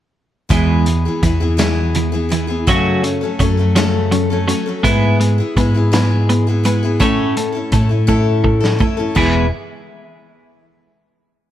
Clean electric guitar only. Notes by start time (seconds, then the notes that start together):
0.51 E2 E3 G#3
0.87 E2 E3
1.23 E2 E3
1.59 E2 E3
1.96 E2 E3
2.32 E2 E3
2.68 F#3 C#4 F#4
3.03 F#3 C#4
3.39 F#3 C#4
3.75 F#3 C#4
4.12 F#3 C#4
4.48 F#3 C#4
4.83 G#3 B3 E4
5.20 G#3 B3
5.57 G#3 B3
5.94 G#3 B3
6.29 G#3 B3
6.65 G#3 B3
7.00 A2 A3 C#4
7.37 A2 A3
7.72 A2 A3
8.09 A2 A3
8.44 A2 A3
8.81 A2 A3
9.16 E2 E3 G#3 B3 E4 G#4